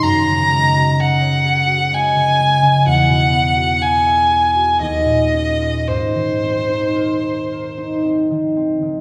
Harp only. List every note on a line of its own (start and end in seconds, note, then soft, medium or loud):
0.00 2.91 F#2 medium
0.00 0.50 G#3 soft
0.27 2.14 C#3 soft
0.52 1.91 G#3 soft
0.76 1.66 F#4 soft
0.99 1.43 G#4 soft
1.21 2.91 C#5 soft
1.44 3.80 G#4 soft
1.67 3.55 F#4 soft
1.92 2.38 G#3 soft
2.15 2.61 C#3 soft
2.40 4.86 G#3 soft
2.62 2.90 C#3 soft
2.86 4.85 E2 medium
3.09 4.85 B2 soft
3.32 4.85 B3 soft
3.56 4.54 F#4 soft
3.81 4.30 G#4 soft
4.06 4.86 E5 soft
4.31 4.86 G#4 soft
4.55 4.85 F#4 soft
4.80 5.92 D#2 soft
5.05 5.91 A#2 soft
5.33 5.92 C#4 soft
5.60 5.93 F4 soft
5.89 9.01 G#2 soft
6.15 8.29 D#3 soft
6.43 8.03 C4 soft
6.69 7.77 D#4 soft
6.96 7.51 A#4 soft
7.24 9.01 C5 soft
7.52 9.01 A#4 soft
7.78 9.01 D#4 soft
8.04 8.55 C4 soft
8.30 8.81 D#3 soft
8.56 9.01 C4 soft
8.82 9.01 D#3 soft